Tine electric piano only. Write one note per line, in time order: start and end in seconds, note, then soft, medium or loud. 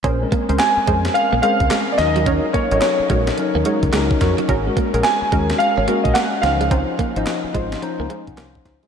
0.22 0.81 G#3 medium
0.22 0.81 C4 medium
0.22 0.82 C#4 medium
0.22 0.82 A#4 loud
0.88 1.38 G#3 medium
0.88 1.38 C4 medium
0.88 1.39 C#4 medium
0.88 1.39 A#4 medium
1.43 1.99 G#3 medium
1.43 1.99 C4 medium
1.43 1.98 C#4 medium
1.43 1.99 A#4 medium
1.99 2.61 F#3 medium
1.99 2.61 C#4 medium
1.99 2.61 D#4 medium
1.99 2.62 A#4 medium
2.72 3.31 F#3 medium
2.72 3.31 C#4 medium
2.72 3.32 D#4 medium
2.72 2.77 A4 medium
2.79 3.35 A#4 medium
3.38 3.88 F#3 medium
3.38 3.88 C#4 medium
3.38 3.89 D#4 medium
3.38 3.89 A#4 medium
3.93 4.49 F#3 medium
3.93 4.49 C#4 medium
3.93 4.49 D#4 medium
3.93 4.49 A#4 loud
4.66 5.26 G#3 medium
4.66 5.26 C#4 medium
4.66 5.26 F#4 medium
4.66 5.26 A#4 loud
5.32 5.82 G#3 medium
5.32 5.83 C#4 medium
5.32 5.83 F#4 medium
5.32 5.83 A#4 medium
5.88 6.43 G#3 medium
5.88 6.42 C#4 medium
5.88 6.44 F#4 medium
5.88 6.44 A#4 medium
6.43 6.51 E3 medium
6.43 7.05 C#4 medium
6.43 7.06 D#4 medium
6.43 7.06 C5 medium
6.50 7.09 F3 medium
7.16 7.76 F3 loud
7.16 7.76 C#4 medium
7.16 7.76 D#4 medium
7.16 7.76 D#5 loud
7.55 7.81 C6 medium
7.82 8.33 F3 loud
7.82 8.33 C#4 medium
7.82 8.33 D#4 medium
7.82 8.33 C5 loud
7.82 7.99 A#5 medium
8.00 8.26 G#5 medium
8.28 8.37 F#5 medium
8.38 8.88 F3 loud
8.38 8.88 C#4 medium
8.38 8.88 D#4 medium
8.38 8.88 C5 loud
8.38 8.54 F5 medium
8.55 8.88 D#5 medium